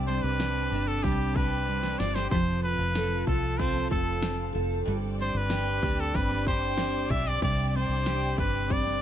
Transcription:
0.00 0.20 C2 loud
0.00 2.31 C3 medium
0.00 1.04 G3 medium
0.00 0.40 C4 medium
0.00 1.69 C4 medium
0.00 7.39 C4 medium
0.00 0.71 D4 medium
0.00 0.40 G4 medium
0.00 2.27 D5 medium
0.00 2.29 A5 medium
0.00 2.27 D6 medium
0.07 1.03 G3 medium
0.07 0.71 D4 medium
0.07 0.25 C5 medium
0.07 tambourine soft
0.07 shaker medium
0.23 0.68 C2 loud
0.23 0.89 B4 loud
0.23 shaker soft
0.39 1.36 C4 medium
0.39 1.36 G4 medium
0.39 snare loud
0.39 tambourine medium
0.39 shaker medium
0.71 1.01 G1 medium
0.71 2.38 D4 medium
0.71 2.39 D4 medium
0.71 tambourine medium
0.71 shaker medium
0.88 1.05 A4 medium
0.88 shaker soft
1.03 1.96 C2 loud
1.03 1.67 G3 medium
1.03 2.32 G3 medium
1.03 1.37 G4 medium
1.03 kick medium
1.03 tambourine soft
1.03 shaker medium
1.36 2.00 C4 medium
1.36 2.00 G4 medium
1.36 2.00 B4 medium
1.36 kick medium
1.36 tambourine medium
1.36 shaker soft
1.67 2.31 G3 medium
1.67 3.59 C4 medium
1.67 tambourine medium
1.67 shaker medium
1.83 snare medium
1.99 2.29 G1 medium
1.99 2.63 C4 medium
1.99 2.18 F4 medium
1.99 2.16 D5 medium
1.99 snare medium
1.99 tambourine medium
1.99 shaker soft
2.15 2.39 G4 medium
2.15 2.30 C5 loud
2.15 snare medium
2.15 shaker soft
2.30 2.76 F1 loud
2.30 4.87 F3 medium
2.30 4.88 F3 medium
2.30 4.85 A4 medium
2.30 2.61 C5 loud
2.30 4.85 F5 medium
2.30 4.85 A5 medium
2.30 kick loud
2.30 tambourine soft
2.30 shaker medium
2.63 3.59 C4 medium
2.63 3.27 F4 medium
2.63 3.23 B4 loud
2.63 shaker medium
2.79 3.23 F1 loud
2.95 3.90 F4 medium
2.95 3.89 A4 medium
2.95 snare loud
2.95 tambourine medium
2.95 shaker medium
3.27 3.87 C2 loud
3.27 4.94 F4 medium
3.27 4.94 A4 medium
3.27 3.61 A4 medium
3.27 kick medium
3.27 tambourine medium
3.27 shaker medium
3.59 4.24 C4 medium
3.59 4.22 C4 medium
3.59 3.90 C5 loud
3.59 kick medium
3.59 tambourine soft
3.59 shaker medium
3.76 snare soft
3.90 4.51 F1 loud
3.90 4.54 F4 medium
3.90 4.51 A4 medium
3.90 kick medium
3.90 tambourine soft
3.90 shaker soft
4.23 5.22 C4 medium
4.23 5.20 C4 medium
4.23 snare loud
4.23 tambourine medium
4.23 shaker medium
4.53 4.85 F1 medium
4.53 4.94 F4 medium
4.53 4.92 A4 medium
4.53 tambourine soft
4.53 shaker soft
4.72 shaker soft
4.85 5.31 G1 loud
4.85 7.42 G2 medium
4.85 7.42 G3 medium
4.85 9.02 D5 medium
4.85 9.02 G5 medium
4.85 9.02 D6 medium
4.85 tambourine soft
4.85 shaker medium
5.19 6.16 C4 medium
5.19 5.83 D4 medium
5.19 5.39 C5 medium
5.19 tambourine soft
5.19 shaker medium
5.35 5.79 G1 medium
5.35 6.02 B4 loud
5.49 6.47 D4 medium
5.49 6.47 G4 medium
5.49 snare loud
5.49 tambourine medium
5.49 shaker medium
5.82 6.12 D2 medium
5.82 7.74 D4 medium
5.82 8.38 G4 medium
5.82 kick medium
5.82 tambourine medium
5.82 shaker medium
6.00 6.17 A4 medium
6.14 7.07 G1 loud
6.14 8.70 G3 medium
6.14 6.79 C4 medium
6.14 6.47 B4 medium
6.14 kick loud
6.14 tambourine soft
6.14 shaker medium
6.31 snare soft
6.47 7.11 D4 medium
6.47 7.10 G4 medium
6.47 7.12 C5 loud
6.47 kick medium
6.47 tambourine medium
6.47 shaker soft
6.78 7.75 C4 medium
6.78 7.78 C4 medium
6.78 snare loud
6.78 tambourine medium
6.78 shaker medium
7.10 7.40 B1 medium
7.10 7.78 D4 medium
7.10 7.27 F4 medium
7.10 7.30 E5 loud
7.10 kick medium
7.10 tambourine medium
7.10 shaker soft
7.26 7.49 G4 medium
7.26 7.42 D5 loud
7.26 shaker soft
7.41 7.86 C2 loud
7.41 9.02 C3 medium
7.41 9.02 G3 medium
7.41 9.02 C4 medium
7.41 7.68 D5 loud
7.41 kick loud
7.41 tambourine soft
7.41 shaker medium
7.68 7.78 D5 medium
7.74 8.68 C4 medium
7.74 8.38 D4 medium
7.74 8.39 C5 loud
7.74 shaker medium
7.89 8.34 C2 loud
8.06 9.01 D4 medium
8.06 9.02 G4 medium
8.06 snare loud
8.06 tambourine medium
8.06 shaker medium
8.38 8.98 G1 medium
8.38 9.02 D4 medium
8.38 9.02 G4 medium
8.38 8.73 B4 loud
8.38 kick medium
8.38 tambourine medium
8.38 shaker medium
8.70 9.02 G3 medium
8.70 9.00 C4 medium
8.70 9.02 D5 loud
8.70 kick medium
8.70 tambourine soft
8.70 shaker medium
8.86 snare soft

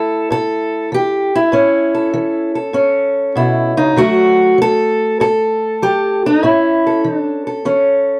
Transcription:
0.00 0.27 E3 medium
0.00 1.53 A3 soft
0.00 1.34 E4 soft
0.00 0.31 A4 loud
0.30 0.88 A2 medium
0.30 0.93 A4 medium
0.92 1.49 E3 medium
0.92 1.35 G4 medium
1.35 2.57 E4 medium
1.52 2.10 A2 medium
1.52 2.73 C#4 medium
1.95 2.55 A4 soft
2.14 2.71 E3 medium
2.55 3.98 A4 soft
2.73 3.32 A2 medium
2.73 3.95 C#4 soft
3.36 3.77 B2 medium
3.36 3.77 E4 medium
3.77 3.96 C#3 medium
3.77 3.97 D#4 medium
3.97 4.55 D3 medium
3.97 4.57 F#3 soft
3.97 6.44 A3 medium
3.97 4.59 F#4 medium
4.58 5.16 F#3 medium
4.58 5.20 A4 loud
5.20 5.77 A2 medium
5.20 6.43 A4 medium
5.82 6.39 F#3 medium
5.82 6.24 G4 medium
6.26 6.46 D#4 medium
6.43 7.00 A2 medium
6.43 7.65 C#4 medium
6.43 7.05 E4 medium
6.87 7.46 A4 soft
7.04 7.62 E3 medium
7.04 7.18 D#4 medium
7.18 7.47 D4 medium
7.47 8.20 A4 soft
7.65 8.20 E3 medium
7.65 8.20 C#4 soft

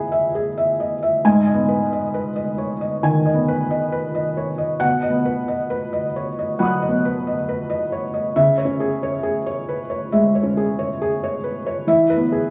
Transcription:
0.00 1.26 B3 medium
0.00 0.35 G#4 medium
0.00 0.80 D#5 medium
0.00 0.12 E5 medium
0.00 1.25 G#5 medium
0.12 0.47 E5 medium
0.35 0.70 G#4 medium
0.58 0.93 E5 medium
0.80 1.02 D#5 medium
1.03 1.24 E5 medium
1.25 3.00 G#2 medium
1.25 1.60 G#5 medium
1.47 1.83 D#5 medium
1.54 2.02 B3 medium
1.68 2.04 B4 medium
1.93 2.28 D#5 medium
2.14 2.50 B4 medium
2.36 2.72 D#5 medium
2.58 2.81 C#5 medium
2.81 3.17 D#5 medium
3.03 3.51 D#3 medium
3.03 3.39 G#5 medium
3.26 3.61 D#5 medium
3.34 3.80 B3 medium
3.48 3.83 B4 medium
3.71 4.05 D#5 medium
3.92 4.27 B4 medium
4.15 4.49 D#5 medium
4.37 4.58 C#5 medium
4.58 4.80 D#5 medium
4.80 6.54 B2 medium
4.80 5.15 F#5 medium
5.02 5.38 D#5 medium
5.10 5.57 B3 medium
5.25 5.60 B4 medium
5.48 5.83 D#5 medium
5.70 6.05 B4 medium
5.93 6.27 D#5 medium
6.16 6.37 C#5 medium
6.39 6.73 D#5 medium
6.59 7.06 F#3 medium
6.59 6.94 F#5 medium
6.59 8.30 B5 soft
6.59 8.32 D#6 medium
6.65 8.33 F#6 soft
6.82 7.16 D#5 medium
6.89 7.35 B3 medium
7.05 7.38 B4 medium
7.27 7.60 D#5 medium
7.49 7.82 B4 medium
7.70 8.04 D#5 medium
7.92 8.13 C#5 medium
8.14 8.35 D#5 medium
8.36 10.07 C#3 medium
8.36 8.70 E5 medium
8.58 8.92 C#5 medium
8.65 9.11 C#4 medium
8.80 9.14 G#4 medium
9.03 9.37 C#5 medium
9.23 9.58 G#4 medium
9.46 9.80 C#5 medium
9.69 9.89 B4 medium
9.90 10.24 C#5 medium
10.12 10.59 G#3 medium
10.12 10.46 E5 medium
10.35 10.69 C#5 medium
10.43 10.88 C#4 medium
10.57 10.91 G#4 medium
10.79 11.13 C#5 medium
11.02 11.35 G#4 medium
11.23 11.57 C#5 medium
11.44 11.65 B4 medium
11.66 11.88 C#5 medium
11.87 12.50 E3 medium
11.87 12.23 E5 medium
12.10 12.45 B4 medium
12.17 12.50 B3 medium
12.32 12.50 G#4 medium

